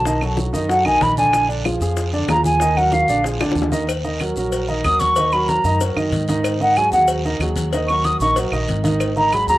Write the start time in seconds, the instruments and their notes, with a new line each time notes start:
Already playing: upright bass B1, flute A5
0.05 grand piano D#3 D#4 D#5, high bongo, high conga, long guiro, maracas
0.21 grand piano F#3 F#4 A4, high conga, claves, maracas
0.37 high bongo, high conga, short guiro, maracas
0.53 upright bass F#2, grand piano D#3 D#4 D#5, high bongo, high conga, short guiro, maracas
0.69 grand piano F#3 F#4 A4, flute F#5, high bongo, high conga, long guiro, maracas
0.85 upright bass B1, grand piano D#3 D#4 D#5, flute G#5, high bongo, high conga, claves, maracas
1.01 upright bass A#1, flute B5, high bongo, low bongo, high conga, short guiro, maracas
1.17 grand piano D3 D4 D5, flute G#5, high bongo, high conga, short guiro, maracas
1.33 high bongo, high conga, long guiro, claves, maracas
1.49 grand piano D3 D4 D5, high conga, maracas
1.65 grand piano F3 F4 G#4, high bongo, high conga, short guiro, claves, maracas
1.80 upright bass F2, grand piano F3 F4 G#4, high bongo, high conga, short guiro, maracas
1.96 high bongo, high conga, long guiro, maracas
2.13 grand piano D3 D4 D5, high bongo, high conga, maracas
2.28 upright bass D#2, grand piano F3 F4 G#4, flute A#5, high bongo, low bongo, high conga, short guiro, claves, maracas
2.44 flute G#5, high bongo, high conga, short guiro, maracas
2.60 grand piano D#3 D#4 D#5, high bongo, high conga, long guiro, maracas
2.76 grand piano F#3 F#4 A#4, flute F#5, high conga, claves, maracas
2.92 flute F5, high bongo, high conga, short guiro, maracas
3.07 upright bass A#1, grand piano D3 D4 D5, high bongo, high conga, short guiro, maracas
3.24 grand piano F3 F4 G#4, high bongo, high conga, long guiro, maracas
3.39 upright bass D2, grand piano D3 D4 D5, high bongo, high conga, claves, maracas
3.52 upright bass D#2, high bongo
3.56 high conga, short guiro, maracas
3.62 low bongo
3.72 grand piano D#3 D#4 D#5, low bongo, high conga, short guiro, maracas
3.87 cowbell, high conga, long guiro, claves, maracas
4.04 grand piano D#3 D#4 D#5, high conga, maracas
4.20 grand piano F#3 F#4 A#4, cowbell, high conga, short guiro, claves, maracas
4.36 upright bass A#1, grand piano F#3 F#4 A#4, high conga, short guiro, maracas
4.52 cowbell, high conga, long guiro, maracas
4.68 grand piano D#3 D#4 D#5, high conga, maracas
4.84 upright bass D#2, grand piano F#3 F#4 A#4, flute D#6, cowbell, high conga, short guiro, claves, maracas
5.00 flute C#6, cowbell, high conga, short guiro, maracas
5.16 grand piano D#3 D#4 D#5, cowbell, high conga, long guiro, maracas
5.32 grand piano F#3 F#4 A#4, flute B5, high conga, claves, maracas
5.48 flute A#5, cowbell, high conga, short guiro, maracas
5.64 upright bass F#2, grand piano D#3 D#4 D#5, high conga, short guiro, maracas
5.80 grand piano F#3 F#4 A#4, cowbell, high conga, long guiro, maracas
5.96 upright bass F#2, grand piano D#3 D#4 D#5, high conga, claves, maracas
6.11 upright bass G#2, cowbell, high conga, short guiro, maracas
6.28 grand piano D#3 D#4 D#5, cowbell, high conga, short guiro, maracas
6.44 cowbell, high conga, long guiro, claves, maracas
6.60 grand piano D#3 D#4 D#5, flute F#5, high conga, maracas
6.76 grand piano F#3 F#4 G#4, flute G#5, cowbell, high conga, short guiro, claves, maracas
6.92 upright bass D#2, grand piano F#3 F#4 G#4, flute F#5, high conga, short guiro, maracas
7.08 cowbell, high conga, long guiro, maracas
7.25 grand piano D#3 D#4 D#5, high conga, maracas
7.39 upright bass D#2, grand piano F#3 F#4 G#4, cowbell, high conga, short guiro, claves, maracas
7.56 cowbell, high conga, short guiro, maracas
7.73 grand piano D#3 D#4 D#5, cowbell, high conga, long guiro, maracas
7.88 grand piano F#3 F#4 A#4, flute C#6, high conga, claves, maracas
8.04 flute D#6, cowbell, high conga, short guiro, maracas
8.19 upright bass A#1, grand piano D#3 D#4 D#5, flute C#6, high conga, short guiro, maracas
8.36 grand piano F#3 F#4 A#4, cowbell, high conga, long guiro, maracas
8.51 upright bass A#1, grand piano D#3 D#4 D#5, high conga, claves, maracas
8.68 upright bass G#1, cowbell, high conga, short guiro, maracas
8.84 grand piano D#3 D#4 D#5, cowbell, high conga, short guiro, maracas
9.00 cowbell, high conga, long guiro, claves, maracas
9.16 grand piano D#3 D#4 D#5, flute A#5, high conga, maracas
9.32 grand piano F#3 F#4 G#4, flute B5, cowbell, high conga, short guiro, claves, maracas
9.47 upright bass D#2, grand piano F#3 F#4 G#4, flute A#5, high conga, short guiro, maracas